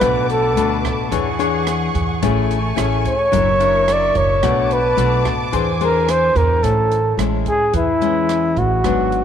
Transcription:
Already playing: B4 D6
0.00 B1 B2 A3 D4 F#4 B4 A5, kick, cross-stick, closed hi-hat
0.30 A4, closed hi-hat
0.56 D2 A3 D4 F#4, closed hi-hat
0.85 kick, cross-stick, closed hi-hat
1.11 E2 E3 D4 G#4 C#5 F#5 C#6, kick, closed hi-hat
1.39 D4 G#4 C#5, closed hi-hat
1.67 cross-stick, closed hi-hat
1.95 E2, kick, closed hi-hat
2.22 A1 A3 C#4 E4 G#4 G#5 C#6, kick, closed hi-hat
2.51 closed hi-hat
2.76 A1 C#4 E4 G#4, cross-stick, closed hi-hat
3.05 C#5, kick, closed hi-hat
3.32 F#1 F#3 D4 E4 A#4 E5 C#6, kick, closed hi-hat
3.60 D4 E4 A#4, closed hi-hat
3.88 cross-stick, closed hi-hat
3.93 D5
4.15 F#1 C#5, kick, closed hi-hat
4.43 B1 B2 A3 D4 F#4 B4 A5 D6, kick, cross-stick, closed hi-hat
4.71 B4, closed hi-hat
4.97 B1 A3 D4 F#4, closed hi-hat
5.25 kick, cross-stick, closed hi-hat
5.52 E2 E3 D4 G#4 C5 G#5, kick, closed hi-hat
5.81 D4 G#4 A#4 C5, closed hi-hat
6.08 C5, cross-stick, closed hi-hat
6.36 E2 A#4, kick, closed hi-hat
6.63 A1 A2 C#4 E4 A4, kick, closed hi-hat
6.91 closed hi-hat
7.18 A1 G#3 C#4 E4, cross-stick, closed hi-hat
7.46 G#4, kick, closed hi-hat
7.73 E2 E3 E4, kick, closed hi-hat
8.01 G#3 C#4 E4, closed hi-hat
8.29 cross-stick, closed hi-hat
8.57 A1 F#4, kick, closed hi-hat
8.84 G#1 G#2 F#3 B3 D4, kick, cross-stick, closed hi-hat
9.12 closed hi-hat

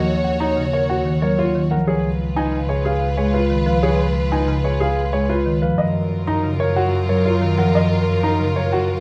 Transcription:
Already playing: D#2 F#4 C#5 D#5
0.24 F#5
0.40 D#4 A#5
0.57 C#3
0.73 A#4 C#5
0.90 F#4 F#5
1.05 D#3
1.22 F#3 A#4 C#5
1.38 F4 C#5
1.55 D#3
1.71 F3 A#4 F#5
1.87 C#2 F4 G#4 B4 C#5
2.36 D#4 G#5
2.53 C#3
2.69 G#4 C#5
2.85 G#4 F5
3.17 G#3 G#4 C#5
3.34 F4 B4
3.50 D#3
3.66 F3 B4 F5
3.83 G#4 C#5
4.32 D#4 G#5
4.48 C#3
4.64 G#4 C#5
4.80 G#4 F5
5.13 G#3 G#4 C#5
5.29 F4 B4
5.46 D#3
5.62 F3 B4 F5
5.78 F#2 F4 A#4 D#5
6.27 D#4 A#5
6.44 C#3
6.60 A#4 C#5
6.76 F#4 F#5
7.09 F#3 A#4 C#5
7.25 F4 C#5
7.42 D#3
7.58 F3 A#4 F#5
7.75 D#5
8.23 D#4 A#5
8.40 C#3
8.56 A#4 C#5
8.72 F#4 F#5

